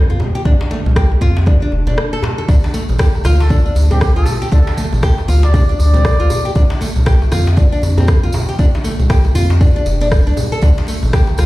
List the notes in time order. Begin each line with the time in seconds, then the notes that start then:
0.10 F2 F4, muted conga
0.20 djembe tone, low conga
0.35 G4, muted conga
0.45 F2 D4, kick, high conga, djembe tone
0.61 djembe slap
0.71 A3, muted conga, high conga
0.86 C2, low conga
0.96 G4, kick, cross-stick, muted conga, djembe tone, high conga
1.12 djembe tone
1.21 F2 F4, kick, muted conga, high conga
1.37 djembe slap
1.46 D4, kick, muted conga, high conga, djembe bass, low conga
1.62 D4
1.72 F1, djembe tone
1.87 D4, muted conga, low conga
1.98 cross-stick
2.13 A4, muted conga
2.23 djembe slap, djembe bass, low conga
2.38 A4, muted conga
2.48 D2 D4, kick, tambourine, djembe tone, high conga
2.64 tambourine, djembe slap
2.74 A3, tambourine, muted conga
2.89 A1, tambourine, low conga
2.99 G4, kick, cross-stick, tambourine, muted conga, high conga, djembe tone
3.14 tambourine, djembe tone
3.24 D2 F4, cross-stick, tambourine, muted conga, high conga
3.40 A4, tambourine, djembe slap
3.49 D4, kick, tambourine, muted conga
3.66 D4, tambourine
3.75 D2, tambourine, high conga, djembe tone
3.91 C4 G4, tambourine, muted conga, djembe bass, low conga
4.01 G4, kick, cross-stick, tambourine, high conga
4.16 D2 F4 A4, tambourine, muted conga
4.26 tambourine, djembe tone, low conga
4.42 G4, tambourine, muted conga
4.52 D2 D4 A4, kick, tambourine, djembe tone, high conga
4.67 tambourine, djembe slap
4.77 A3, tambourine, muted conga, high conga
4.93 A1, tambourine, low conga
5.03 G4, kick, cross-stick, tambourine, muted conga, djembe tone, high conga
5.18 tambourine, djembe tone
5.28 D2 F4, tambourine, muted conga, high conga
5.43 D5, tambourine, djembe slap
5.54 D4, kick, tambourine, muted conga, high conga, djembe bass
5.69 D4, tambourine
5.79 D2 D5, tambourine, djembe tone
5.94 C4, tambourine, muted conga, low conga
6.05 kick, cross-stick, tambourine
6.20 D2 F4, tambourine, muted conga
6.30 tambourine, djembe bass, low conga
6.45 G4, tambourine, muted conga
6.55 F2 D4, kick, tambourine, high conga, djembe tone
6.70 tambourine, djembe slap
6.81 A3, tambourine, muted conga
6.96 C2, tambourine, low conga
7.06 G4, kick, cross-stick, tambourine, muted conga, high conga, djembe tone
7.22 tambourine, djembe tone
7.32 F2 F4, cross-stick, tambourine, muted conga, high conga
7.47 tambourine, djembe slap
7.57 D4, kick, tambourine, muted conga
7.72 D4, tambourine
7.82 F2, tambourine, high conga, djembe tone
7.97 C4, tambourine, muted conga, low conga, djembe bass
8.08 kick, cross-stick, tambourine, high conga
8.23 F2 F4, tambourine, muted conga
8.32 tambourine, djembe tone, low conga
8.48 G4, tambourine, muted conga
8.59 F2 D4, kick, tambourine, djembe tone, high conga
8.75 tambourine, djembe slap
8.84 A3, tambourine, muted conga, high conga
8.99 C2, tambourine, low conga
9.10 G4, kick, cross-stick, tambourine, muted conga, djembe tone, high conga
9.24 tambourine, djembe tone
9.35 F2 F4, tambourine, muted conga, high conga
9.50 tambourine, djembe slap
9.61 D4, kick, tambourine, muted conga, high conga, djembe bass
9.76 D4, tambourine
9.86 F1, tambourine, djembe tone
10.00 D4, tambourine, muted conga, low conga
10.11 kick, cross-stick, tambourine
10.27 C2 D4, tambourine, muted conga
10.37 tambourine, low conga, djembe bass
10.52 A4, tambourine, muted conga
10.62 D2 D4, kick, tambourine, high conga, djembe tone
10.78 tambourine, djembe slap
10.87 A3, tambourine, muted conga
11.03 A1, tambourine, low conga
11.13 G4, kick, cross-stick, tambourine, muted conga, djembe tone, high conga
11.27 tambourine, djembe tone
11.38 D2 F4, cross-stick, tambourine, muted conga, high conga